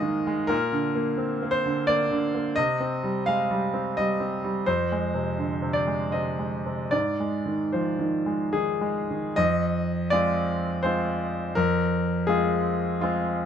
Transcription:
0.00 0.47 G#2 medium
0.00 0.02 D#3 soft
0.00 0.40 D#3 soft
0.00 0.27 G#3 soft
0.00 0.53 A#3 soft
0.00 0.53 D#5 medium
0.00 0.53 F5 medium
0.27 0.50 G#3 soft
0.47 2.53 A#2 medium
0.47 1.52 A#4 medium
0.72 1.09 D3 soft
0.95 1.32 A#3 soft
1.17 1.41 C4 soft
1.42 1.79 A#3 soft
1.51 1.87 C5 medium
1.66 2.02 D3 soft
1.87 2.26 A#3 soft
1.87 2.57 D5 medium
2.11 2.48 D3 soft
2.35 2.58 A#3 soft
2.56 4.63 C3 soft
2.56 3.26 D#5 medium
2.80 3.17 C4 soft
3.03 3.40 G3 soft
3.26 3.51 G#3 soft
3.26 3.96 F5 medium
3.51 3.88 G3 soft
3.74 4.11 C4 soft
3.97 4.35 G3 soft
3.97 4.67 D#5 medium
4.20 4.58 C4 soft
4.44 4.67 G3 soft
4.66 6.88 F2 soft
4.66 5.74 C5 medium
4.92 5.29 G#3 soft
5.14 5.52 C3 soft
5.38 5.62 D3 soft
5.62 6.02 C3 soft
5.73 6.12 D5 medium
5.87 6.28 G#3 soft
6.12 6.55 C3 soft
6.12 6.92 D#5 medium
6.39 6.82 G#3 soft
6.66 6.93 C3 soft
6.91 9.34 G#2 soft
6.91 7.73 D5 medium
7.20 7.63 G#3 soft
7.46 7.89 D#3 soft
7.72 8.00 F3 soft
7.72 8.52 C5 soft
7.99 8.42 D#3 soft
8.26 8.69 G#3 soft
8.53 8.99 D#3 soft
8.53 9.38 G#4 medium
8.81 9.27 G#3 soft
9.11 9.38 D#3 soft
9.36 10.11 F2 medium
9.36 10.12 D#5 medium
10.10 10.81 G#3 soft
10.10 10.81 C4 soft
10.10 10.81 F4 soft
10.10 10.84 D5 medium
10.83 11.52 G#3 soft
10.83 11.53 C4 soft
10.83 11.53 F4 soft
10.83 11.55 C5 medium
11.55 12.26 F2 soft
11.55 12.28 A#4 medium
12.27 12.97 G#3 soft
12.27 12.98 C4 soft
12.27 12.98 F4 soft
12.27 13.01 G#4 medium
13.01 13.46 G#3 soft
13.01 13.46 C4 soft
13.01 13.46 F4 medium

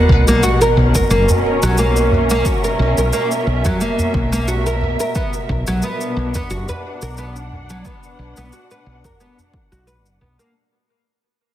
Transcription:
0.00 10.55 B2 medium
0.00 0.26 A#3 medium
0.00 0.85 F#5 medium
0.00 sub drop medium
0.09 0.25 B1 medium
0.09 kick medium
0.28 0.41 B1 medium
0.28 0.42 A#3 loud
0.28 shaker medium
0.43 0.61 F#4 medium
0.43 shaker medium
0.53 6.71 A#4 medium
0.61 5.15 C#4 medium
0.61 0.93 A#4 medium
0.61 shaker soft
0.77 0.92 B1 medium
0.95 1.09 A#4 medium
0.95 kick loud
0.95 udu medium
0.95 shaker medium
1.10 1.26 F#1 loud
1.10 1.28 A#3 medium
1.10 shaker soft
1.29 udu medium
1.29 shaker soft
1.63 2.41 B1 medium
1.63 1.77 F#3 medium
1.63 shaker medium
1.78 2.29 A#3 medium
1.78 shaker medium
1.96 shaker soft
2.07 6.85 E5 medium
2.11 udu medium
2.30 2.44 A#3 loud
2.30 shaker medium
2.45 2.63 F#4 medium
2.45 kick loud
2.45 shaker medium
2.64 2.96 A#4 medium
2.64 shaker soft
2.79 2.94 B1 loud
2.98 3.10 B1 medium
2.98 3.12 A#4 medium
2.98 shaker medium
3.13 3.30 A#3 medium
3.13 shaker medium
3.31 shaker soft
3.47 3.62 B1 medium
3.65 3.80 F#3 medium
3.65 kick loud
3.65 udu medium
3.65 shaker medium
3.81 4.31 A#3 medium
3.81 shaker medium
3.99 udu loud
3.99 shaker soft
4.14 4.95 B1 medium
4.14 kick loud
4.32 4.46 A#3 medium
4.32 shaker medium
4.48 4.65 F#4 medium
4.48 shaker medium
4.66 4.98 A#4 medium
4.66 shaker soft
4.81 udu medium
5.00 5.14 A#4 medium
5.00 shaker medium
5.15 5.33 B3 medium
5.15 kick loud
5.15 shaker medium
5.33 shaker soft
5.49 5.64 B1 medium
5.49 kick medium
5.67 5.80 B1 medium
5.67 5.82 F#3 loud
5.67 shaker medium
5.82 6.33 B3 medium
5.82 shaker medium
5.93 10.54 D4 medium
6.01 shaker soft
6.17 6.32 B1 medium
6.30 10.55 F#5 medium
6.35 6.49 B3 medium
6.35 kick loud
6.35 udu loud
6.35 shaker medium
6.50 6.65 F#1 loud
6.50 6.68 F#4 medium
6.50 shaker soft
6.69 7.00 B4 medium
6.69 udu medium
6.69 shaker soft
7.02 7.81 B1 medium
7.02 7.16 A#4 medium
7.02 shaker medium
7.17 7.35 B3 medium
7.17 shaker medium
7.36 shaker soft
7.52 udu medium
7.70 7.84 F#3 medium
7.70 shaker medium
7.85 8.35 B3 medium
7.85 kick loud
7.85 shaker medium
8.03 shaker soft
8.19 8.34 B1 medium
8.37 8.50 B1 medium
8.37 8.51 B3 medium
8.37 shaker medium
8.53 8.70 F#4 medium
8.53 shaker medium
8.71 9.03 B4 medium
8.71 shaker soft
8.86 9.01 B1 medium
9.05 9.18 A#4 medium
9.05 kick loud
9.05 udu medium
9.05 shaker medium
9.20 9.37 B3 medium
9.20 shaker soft
9.38 udu medium
9.38 shaker soft
9.54 kick loud
9.72 10.06 B1 medium
9.72 9.86 F#4 medium
9.72 shaker medium
9.87 10.04 B4 medium
9.87 shaker soft
10.06 10.18 F#1 medium
10.06 shaker soft
10.21 10.36 B1 medium
10.21 10.37 B3 medium
10.21 udu medium
10.39 10.53 A#3 medium
10.39 shaker medium

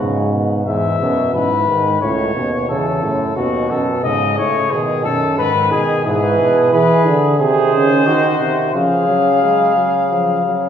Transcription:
0.00 0.65 G#2 medium
0.00 0.32 C#3 medium
0.00 0.62 F#4 medium
0.33 0.66 B2 medium
0.67 0.98 E2 medium
0.67 0.98 G#2 medium
0.67 1.30 E5 medium
1.00 1.33 F#2 medium
1.00 1.33 B2 medium
1.34 1.67 G#2 medium
1.34 1.67 E3 medium
1.34 2.00 B4 medium
1.68 2.01 G#2 medium
1.68 2.00 D#3 medium
2.01 2.34 C#2 medium
2.01 2.34 A2 medium
2.01 2.68 C#5 medium
2.35 2.68 D#2 medium
2.35 2.68 B2 medium
2.69 3.04 E2 medium
2.69 3.02 C#3 medium
2.69 3.35 A4 medium
3.03 3.36 F#2 medium
3.03 3.35 A2 medium
3.36 3.72 D#2 medium
3.36 4.05 B2 medium
3.36 3.72 F#4 medium
3.70 4.03 F#2 medium
3.70 4.03 A4 medium
4.04 4.39 G#2 medium
4.04 4.55 C#3 medium
4.04 4.37 D#5 medium
4.37 4.71 A2 medium
4.37 4.72 C#5 medium
4.71 5.06 B2 medium
4.71 5.37 D#3 medium
4.71 5.04 G#4 medium
5.04 5.40 F#2 medium
5.04 5.37 A4 medium
5.38 5.73 G#2 medium
5.38 6.07 D#3 medium
5.38 5.71 B4 medium
5.71 6.05 B2 medium
5.71 6.04 G#4 medium
6.05 6.38 G#2 medium
6.05 7.11 E3 medium
6.05 6.71 G#4 medium
6.05 6.69 B4 medium
6.39 6.72 B2 medium
6.72 7.07 E3 medium
6.72 7.38 G#4 medium
6.72 7.15 B4 medium
7.06 7.38 D3 medium
7.39 7.72 C3 medium
7.39 8.70 D#3 medium
7.39 8.08 G#4 medium
7.39 8.70 C5 medium
7.73 8.05 C#3 medium
8.06 8.40 D#3 medium
8.06 8.74 F#4 medium
8.40 8.74 C3 medium
8.74 10.69 C#3 medium
8.74 9.08 F3 medium
8.74 10.69 G#4 medium
8.74 10.69 F5 medium
9.08 9.42 F#3 medium
9.43 9.76 G#3 medium
9.76 10.10 F#3 medium
10.10 10.44 F3 medium
10.45 10.69 F#3 medium

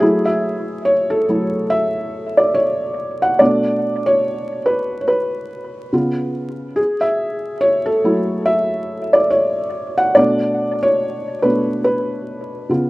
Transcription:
0.00 1.24 F#3 medium
0.00 1.25 A3 soft
0.00 1.25 E4 medium
0.00 0.27 G#4 medium
0.00 0.25 C#5 medium
0.00 0.24 E5 medium
0.25 0.81 E5 medium
0.85 0.91 C#5 medium
1.10 1.72 A4 medium
1.29 1.67 F#3 soft
1.29 1.67 A3 soft
1.29 1.67 E4 medium
1.70 2.40 E5 medium
2.37 2.55 D5 medium
2.54 3.18 C#5 medium
3.22 3.40 F#5 loud
3.39 5.89 B2 medium
3.39 5.90 A3 soft
3.39 5.90 D4 medium
3.39 4.03 D5 loud
4.06 4.62 C#5 medium
4.66 5.04 B4 medium
5.01 5.08 C#5 medium
5.08 6.31 B4 medium
5.93 6.73 C#3 medium
5.93 6.74 B3 soft
5.93 6.74 F4 medium
6.76 7.03 G#4 medium
7.01 7.63 E5 medium
7.61 7.87 C#5 loud
7.86 8.48 A4 medium
8.04 9.27 F#3 medium
8.04 9.27 A3 soft
8.04 9.28 E4 medium
8.46 9.15 E5 medium
9.13 9.31 D5 medium
9.30 10.00 C#5 medium
9.98 10.16 F#5 loud
10.15 10.75 B2 medium
10.15 10.75 A3 soft
10.15 10.75 D4 medium
10.15 10.85 D5 loud
10.83 11.44 C#5 medium
11.42 11.81 B2 soft
11.42 11.81 A3 soft
11.42 11.81 D4 medium
11.42 11.82 B4 medium
11.84 12.90 B4 medium
12.69 12.90 C#3 soft
12.69 12.90 B3 soft
12.69 12.90 F4 medium

